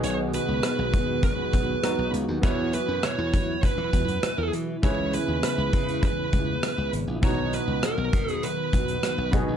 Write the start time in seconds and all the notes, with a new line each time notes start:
Already playing: B2 D#3 F#3 G#3 B3 D#4 F#4 G#4
0.04 B1 C#5, closed hi-hat
0.33 B4, closed hi-hat
0.48 C#2
0.63 B4, cross-stick, closed hi-hat
0.79 B1
0.93 B2, kick, closed hi-hat
1.23 B4, kick, closed hi-hat
1.53 B1, kick, closed hi-hat
1.83 B3 D#4 F#4 A#5, cross-stick, closed hi-hat
1.98 B1
2.13 C#2, closed hi-hat
2.28 D#2
2.42 E2 B2 E3 B3 E4 F#4 B4 C#5, kick, closed hi-hat
2.73 B4, closed hi-hat
2.88 F#2
3.03 C#5, cross-stick, closed hi-hat
3.18 E2
3.33 E3, kick, closed hi-hat
3.63 B4, kick, closed hi-hat
3.78 E3
3.93 E2, kick, closed hi-hat
4.08 F#2, closed hi-hat
4.23 muted slap bass stroke, cross-stick, closed hi-hat
4.38 E2
4.53 E3, closed hi-hat
4.82 C#2 C#3 G#3 B3 C#4 E4 G#4 B4 C#5, kick, closed hi-hat
5.13 B4, closed hi-hat
5.28 D#2
5.43 B4, cross-stick, closed hi-hat
5.58 C#2
5.73 C#3, kick, closed hi-hat
5.89 closed hi-hat
6.03 B4, kick, closed hi-hat
6.33 C#2, kick, closed hi-hat
6.63 cross-stick, closed hi-hat
6.78 C#2
6.93 G#1, closed hi-hat
7.07 A#1
7.22 B1 B2 D#3 F#3 B3 D#4 F#4 C#5 A#5, kick, closed hi-hat
7.53 B4, closed hi-hat
7.67 C#2
7.83 A#4, cross-stick, closed hi-hat
7.98 B1
8.13 B2, kick, closed hi-hat
8.28 G#4, closed hi-hat
8.43 B4, closed hi-hat
8.73 B1, kick, closed hi-hat
8.88 closed hi-hat
9.03 cross-stick, closed hi-hat
9.18 B1
9.32 B1 B2 G#3 B3 D#4 F#4 G#4, kick, closed hi-hat
9.48 A#1